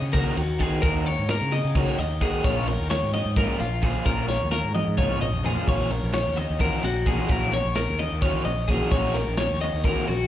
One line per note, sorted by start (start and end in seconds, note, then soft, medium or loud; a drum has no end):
0.00 0.23 C#3 loud
0.00 0.14 D#5 medium
0.13 0.37 D#3 medium
0.13 0.36 A#3 medium
0.13 0.36 D#4 medium
0.13 0.35 F#4 loud
0.13 0.37 A#4 medium
0.13 kick loud
0.13 ride loud
0.36 0.58 D#2 loud
0.36 0.61 F#4 medium
0.36 muted overdriven electric guitar stroke medium
0.36 ride medium
0.59 0.81 D#3 loud
0.59 0.70 D#3 medium
0.59 0.82 A#3 medium
0.59 0.82 D#4 loud
0.59 0.82 F#4 loud
0.59 0.84 G#4 medium
0.59 kick medium
0.59 ride medium
0.82 1.14 D#2 loud
0.82 1.06 D#3 medium
0.82 1.06 A#3 loud
0.82 1.06 D#4 medium
0.82 1.06 F#4 medium
0.82 1.06 A#4 loud
0.82 kick loud
0.82 ride loud
1.06 1.30 C#5 medium
1.06 muted overdriven electric guitar stroke medium
1.06 ride medium
1.19 1.39 G#2 medium
1.29 1.53 A#4 loud
1.29 muted overdriven electric guitar stroke medium
1.29 snare loud
1.29 ride loud
1.42 1.62 C#3 loud
1.52 1.77 D#5 medium
1.52 muted overdriven electric guitar stroke soft
1.52 snare soft
1.52 ride loud
1.65 1.85 C#3 medium
1.75 1.99 D#3 medium
1.75 1.98 A#3 medium
1.75 1.98 D#4 loud
1.75 1.97 F#4 medium
1.75 1.99 C#5 medium
1.75 kick loud
1.75 snare soft
1.75 ride loud
1.98 2.19 D#2 loud
1.98 2.22 D#5 medium
1.98 muted overdriven electric guitar stroke medium
1.98 snare soft
1.98 ride medium
2.21 2.32 D#3 medium
2.21 2.44 D#3 loud
2.21 2.44 A#3 loud
2.21 2.45 D#4 medium
2.21 2.45 F#4 loud
2.21 2.45 G#4 medium
2.21 kick medium
2.21 ride medium
2.44 2.75 A#1 loud
2.44 2.68 F3 medium
2.44 2.68 A#3 loud
2.44 2.67 C#4 medium
2.44 2.66 F4 loud
2.44 2.68 C#5 medium
2.44 kick loud
2.44 ride loud
2.67 2.90 A#4 medium
2.67 muted overdriven electric guitar stroke soft
2.67 ride loud
2.79 3.00 D#2 medium
2.90 3.13 C#5 loud
2.90 muted overdriven electric guitar stroke medium
2.90 snare loud
2.90 ride loud
3.03 3.23 G#2 loud
3.13 3.37 D#5 medium
3.13 muted overdriven electric guitar stroke soft
3.13 ride medium
3.26 3.46 G#2 loud
3.36 3.59 F3 medium
3.36 3.59 A#3 medium
3.36 3.59 C#4 loud
3.36 3.58 F4 loud
3.36 3.60 A#4 medium
3.36 kick loud
3.36 ride loud
3.60 3.81 A#1 loud
3.60 3.83 F4 medium
3.60 muted overdriven electric guitar stroke medium
3.60 ride medium
3.82 3.93 A#2 medium
3.82 4.04 F3 loud
3.82 4.04 A#3 medium
3.82 4.05 C#4 medium
3.82 4.05 F4 loud
3.82 4.06 G#4 medium
3.82 kick medium
3.82 ride medium
4.05 4.37 A#1 loud
4.05 4.28 F3 medium
4.05 4.27 A#3 medium
4.05 4.27 C#4 loud
4.05 4.27 F4 medium
4.05 4.28 A#4 medium
4.05 kick loud
4.05 ride loud
4.28 4.51 C#5 medium
4.28 muted overdriven electric guitar stroke soft
4.28 snare medium
4.41 4.62 D#2 loud
4.51 4.74 A#4 medium
4.51 muted overdriven electric guitar stroke soft
4.51 snare medium
4.64 4.85 G#2 medium
4.75 4.97 D#5 medium
4.75 muted overdriven electric guitar stroke soft
4.75 high tom medium
4.87 5.08 G#2 loud
4.98 5.21 F3 medium
4.98 5.21 A#3 medium
4.98 5.20 C#4 medium
4.98 5.20 F4 loud
4.98 5.21 C#5 medium
4.98 kick loud
4.98 mid tom loud
5.10 mid tom medium
5.21 5.43 A#1 loud
5.21 5.45 D#5 medium
5.21 muted overdriven electric guitar stroke medium
5.21 mid tom loud
5.33 floor tom medium
5.44 5.55 A#2 loud
5.44 5.67 F3 medium
5.44 5.67 A#3 loud
5.44 5.67 C#4 medium
5.44 5.68 F4 loud
5.44 5.68 G#4 medium
5.44 floor tom loud
5.56 floor tom loud
5.67 5.99 A#1 loud
5.67 5.90 E3 medium
5.67 5.90 A#3 medium
5.67 5.90 C#4 medium
5.67 5.89 F#4 medium
5.67 5.91 C#5 loud
5.67 kick loud
5.67 crash loud
5.90 6.14 A#4 medium
5.90 muted overdriven electric guitar stroke medium
5.90 ride loud
6.03 6.24 A#1 medium
6.13 6.37 C#5 medium
6.13 muted overdriven electric guitar stroke soft
6.13 snare loud
6.13 ride loud
6.26 6.47 D#2 medium
6.36 6.60 D#5 medium
6.36 muted overdriven electric guitar stroke soft
6.36 ride medium
6.50 6.70 D#2 medium
6.59 6.83 E3 medium
6.59 6.83 A#3 medium
6.59 6.83 C#4 medium
6.59 6.83 F#4 loud
6.59 6.84 A#4 medium
6.59 kick loud
6.59 ride loud
6.83 7.04 A#1 loud
6.83 7.07 F#4 medium
6.83 muted overdriven electric guitar stroke medium
6.83 snare soft
6.83 ride medium
7.06 7.17 A#2 loud
7.06 7.29 E3 medium
7.06 7.29 A#3 medium
7.06 7.30 C#4 loud
7.06 7.30 F#4 loud
7.06 7.29 G#4 medium
7.06 kick medium
7.06 ride medium
7.28 7.60 A#1 loud
7.28 7.53 E3 medium
7.28 7.53 A#3 medium
7.28 7.53 C#4 medium
7.28 7.52 F#4 loud
7.28 7.53 A#4 medium
7.28 kick loud
7.28 ride loud
7.52 7.76 C#5 medium
7.52 muted overdriven electric guitar stroke medium
7.52 snare soft
7.52 ride medium
7.65 7.86 A#1 medium
7.75 7.99 A#4 loud
7.75 muted overdriven electric guitar stroke soft
7.75 snare loud
7.75 ride loud
7.89 8.09 D#2 medium
7.98 8.22 D#5 medium
7.98 muted overdriven electric guitar stroke soft
7.98 ride medium
8.12 8.32 D#2 medium
8.22 8.46 E3 medium
8.22 8.46 A#3 medium
8.22 8.46 C#4 medium
8.22 8.46 F#4 loud
8.22 8.45 C#5 medium
8.22 kick loud
8.22 ride loud
8.45 8.66 A#1 loud
8.45 8.68 D#5 medium
8.45 muted overdriven electric guitar stroke medium
8.45 ride medium
8.68 8.79 A#2 medium
8.68 8.91 E3 loud
8.68 8.92 A#3 loud
8.68 8.92 C#4 loud
8.68 8.92 F#4 loud
8.68 8.91 G#4 medium
8.68 kick medium
8.68 ride medium
8.91 9.23 A#1 loud
8.91 9.15 E3 medium
8.91 9.16 A#3 medium
8.91 9.16 C#4 loud
8.91 9.15 F#4 loud
8.91 9.15 C#5 medium
8.91 kick loud
8.91 ride loud
9.15 9.38 A#4 medium
9.15 muted overdriven electric guitar stroke soft
9.15 snare soft
9.15 ride loud
9.27 9.47 A#1 loud
9.37 9.61 C#5 medium
9.37 muted overdriven electric guitar stroke medium
9.37 snare loud
9.37 ride loud
9.51 9.71 D#2 loud
9.61 9.85 D#5 medium
9.61 muted overdriven electric guitar stroke soft
9.61 ride medium
9.74 9.94 D#2 medium
9.84 10.08 E3 medium
9.84 10.07 A#3 medium
9.84 10.08 C#4 medium
9.84 10.07 F#4 loud
9.84 10.08 A#4 medium
9.84 kick loud
9.84 ride loud
10.07 10.27 A#1 loud
10.07 10.27 F#4 medium
10.07 muted overdriven electric guitar stroke medium
10.07 snare soft
10.07 ride medium